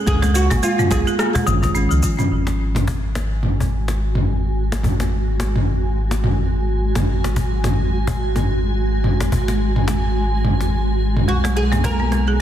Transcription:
0.06 0.52 C#2 medium
0.06 0.21 G#3 medium
0.06 0.36 G#4 loud
0.06 kick loud
0.06 mid tom medium
0.06 shaker soft
0.22 0.33 G#3 loud
0.22 cajon slap medium
0.22 shaker soft
0.34 0.50 G#3 medium
0.34 0.63 F#4 medium
0.34 shaker medium
0.50 0.61 G#1 loud
0.50 0.62 A#3 loud
0.50 cajon bass medium
0.50 cajon slap medium
0.50 shaker soft
0.63 0.72 G#3 loud
0.63 0.92 F4 medium
0.63 shaker soft
0.79 0.90 B3 loud
0.79 mid tom medium
0.79 shaker soft
0.91 1.04 B1 medium
0.91 1.05 G#3 medium
0.91 1.99 G#4 medium
0.91 kick loud
0.91 cajon slap medium
0.91 shaker medium
1.07 1.14 G#4 loud
1.07 shaker soft
1.19 1.34 A#3 medium
1.19 cross-stick medium
1.19 shaker soft
1.35 1.46 G#3 loud
1.35 cajon bass medium
1.35 shaker soft
1.47 1.87 G#1 loud
1.47 1.61 D#3 loud
1.47 mid tom medium
1.47 shaker medium
1.63 1.74 D#3 medium
1.63 kick medium
1.63 cajon slap medium
1.63 shaker soft
1.75 1.90 C#4 medium
1.75 shaker soft
1.91 2.01 C#2 medium
1.91 2.02 F3 medium
1.91 shaker soft
2.03 2.18 F4 medium
2.03 kick medium
2.03 shaker medium
2.19 2.30 C#4 medium
2.19 mid tom medium
2.19 shaker soft
2.31 11.26 G#1 medium
2.31 12.41 G#3 medium
2.31 11.25 F#4 medium
2.31 12.41 G#5 medium
2.47 cajon slap medium
2.75 cajon slap medium
2.75 mid tom medium
2.88 cajon bass medium
3.15 cajon slap medium
3.43 mid tom medium
3.60 cajon bass medium
3.88 cajon slap medium
4.15 mid tom medium
4.72 cajon slap medium
4.83 cajon bass medium
4.83 mid tom medium
5.00 cajon slap medium
5.40 cajon slap medium
5.56 mid tom medium
6.11 cajon slap medium
6.24 mid tom medium
6.95 cajon slap medium
6.95 mid tom medium
7.24 cajon slap medium
7.36 cajon bass medium
7.64 cajon slap medium
7.64 mid tom medium
8.07 cajon bass medium
8.36 cajon slap medium
8.36 mid tom medium
9.04 mid tom medium
9.20 cajon slap medium
9.32 cajon bass medium
9.48 cajon slap medium
9.76 mid tom medium
9.88 cajon slap medium
10.45 mid tom medium
10.61 cajon slap medium
11.17 mid tom medium
11.28 12.41 B1 medium
11.28 11.43 G#3 medium
11.28 12.41 D#4 medium
11.28 11.36 F#4 medium
11.44 11.55 G#3 medium
11.44 cajon slap medium
11.56 11.71 G#3 medium
11.56 11.64 G#4 medium
11.72 11.83 A#3 medium
11.72 cajon slap medium
11.72 mid tom medium
11.84 11.93 G#3 medium
11.84 12.40 A#4 medium
11.84 cajon bass medium
12.00 12.12 B3 medium
12.12 12.27 G#3 medium
12.12 cajon slap medium
12.28 12.35 G#4 medium

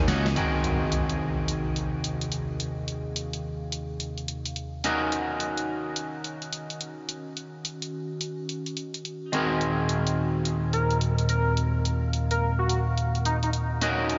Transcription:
0.00 0.31 D#3 medium
0.00 0.32 C#4 medium
0.00 0.32 F#4 medium
0.08 0.34 C#2 loud
0.08 0.26 A#3 medium
0.08 0.26 C#4 medium
0.08 0.26 D#4 medium
0.08 0.26 F#4 loud
0.08 snare medium
0.08 open hi-hat medium
0.26 snare medium
0.26 open hi-hat soft
0.35 4.81 D#2 medium
0.35 4.81 C3 medium
0.35 4.82 D#3 medium
0.35 4.81 A#3 medium
0.35 4.82 C4 medium
0.35 2.58 F#4 medium
0.35 4.82 F#4 medium
0.35 4.81 G#4 medium
0.35 4.82 G#4 medium
0.35 4.82 A#4 medium
0.35 closed hi-hat medium
0.35 impact medium
0.64 closed hi-hat medium
0.92 closed hi-hat medium
1.10 closed hi-hat medium
1.48 closed hi-hat medium
1.76 closed hi-hat medium
2.04 closed hi-hat medium
2.21 closed hi-hat medium
2.32 closed hi-hat medium
2.60 4.83 F5 medium
2.60 closed hi-hat medium
2.88 closed hi-hat medium
3.16 closed hi-hat medium
3.33 closed hi-hat medium
3.72 closed hi-hat medium
4.00 closed hi-hat medium
4.18 closed hi-hat soft
4.28 closed hi-hat medium
4.45 closed hi-hat medium
4.56 closed hi-hat medium
4.84 9.29 D#3 medium
4.84 9.29 C#4 medium
4.84 9.31 C#4 medium
4.84 9.31 D#4 medium
4.84 11.53 F#4 medium
4.84 9.31 F#4 medium
4.84 9.31 A#4 medium
4.84 closed hi-hat medium
5.12 closed hi-hat medium
5.40 closed hi-hat medium
5.58 closed hi-hat medium
5.96 closed hi-hat medium
6.24 closed hi-hat medium
6.42 closed hi-hat soft
6.53 closed hi-hat medium
6.70 closed hi-hat medium
6.81 closed hi-hat medium
7.09 closed hi-hat medium
7.37 closed hi-hat medium
7.65 closed hi-hat medium
7.82 closed hi-hat medium
8.21 closed hi-hat medium
8.49 closed hi-hat medium
8.66 closed hi-hat soft
8.77 closed hi-hat medium
8.94 closed hi-hat medium
9.05 closed hi-hat medium
9.32 13.77 D#2 medium
9.32 13.77 A#2 medium
9.32 13.79 D#3 medium
9.32 13.77 G#3 medium
9.32 13.77 C4 medium
9.32 13.79 C4 medium
9.32 13.79 F#4 medium
9.32 13.79 G#4 medium
9.32 13.79 A#4 medium
9.32 closed hi-hat medium
9.61 closed hi-hat medium
9.89 closed hi-hat medium
10.07 closed hi-hat medium
10.45 closed hi-hat medium
10.73 10.97 A#4 medium
10.73 closed hi-hat medium
10.91 closed hi-hat soft
11.01 closed hi-hat medium
11.18 closed hi-hat medium
11.29 11.53 A#4 medium
11.29 closed hi-hat medium
11.56 13.79 F5 medium
11.56 closed hi-hat medium
11.85 closed hi-hat medium
12.13 closed hi-hat medium
12.31 12.51 A#4 medium
12.31 closed hi-hat medium
12.59 12.79 F#4 medium
12.69 closed hi-hat medium
12.98 closed hi-hat medium
13.15 closed hi-hat soft
13.25 13.37 D#4 medium
13.25 closed hi-hat medium
13.43 13.50 D#4 medium
13.43 closed hi-hat medium
13.53 closed hi-hat medium
13.81 14.18 D#3 medium
13.81 14.18 C#4 medium
13.81 14.18 D#4 medium
13.81 14.18 F#4 medium
13.81 14.18 A#4 medium
13.81 closed hi-hat medium
14.10 closed hi-hat medium

